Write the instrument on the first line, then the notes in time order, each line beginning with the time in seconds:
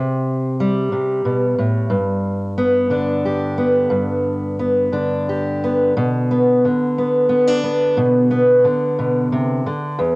steel-string acoustic guitar
Already playing: C3 G4
0.60 G3
0.92 C3
1.25 B2
1.58 A2
1.90 G2
2.58 B3
2.90 D3 D4
3.25 G4
3.58 B3
3.90 G2
4.59 B3
4.92 D3 D4
5.29 G4
5.64 B3
5.97 B2
6.31 B3
6.65 D3
6.98 B3
7.29 B3
7.47 D4
7.64 B3
7.97 B2
8.31 B3
8.64 D3
8.99 B2
9.32 C3
9.66 D3
9.99 E2